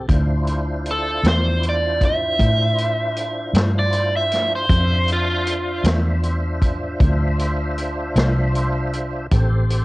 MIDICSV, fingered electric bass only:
0, 0, Header, 1, 2, 480
1, 0, Start_track
1, 0, Tempo, 768738
1, 56, Time_signature, 12, 3, 24, 8
1, 6150, End_track
2, 0, Start_track
2, 0, Title_t, "Fingered electric bass"
2, 0, Program_c, 0, 33
2, 53, Note_on_c, 0, 38, 71
2, 753, Note_off_c, 0, 38, 0
2, 769, Note_on_c, 0, 40, 71
2, 1471, Note_off_c, 0, 40, 0
2, 1493, Note_on_c, 0, 45, 76
2, 2193, Note_off_c, 0, 45, 0
2, 2206, Note_on_c, 0, 43, 76
2, 2909, Note_off_c, 0, 43, 0
2, 2932, Note_on_c, 0, 41, 81
2, 3632, Note_off_c, 0, 41, 0
2, 3646, Note_on_c, 0, 40, 79
2, 4349, Note_off_c, 0, 40, 0
2, 4374, Note_on_c, 0, 38, 69
2, 5073, Note_off_c, 0, 38, 0
2, 5092, Note_on_c, 0, 36, 81
2, 5792, Note_off_c, 0, 36, 0
2, 5820, Note_on_c, 0, 33, 80
2, 6150, Note_off_c, 0, 33, 0
2, 6150, End_track
0, 0, End_of_file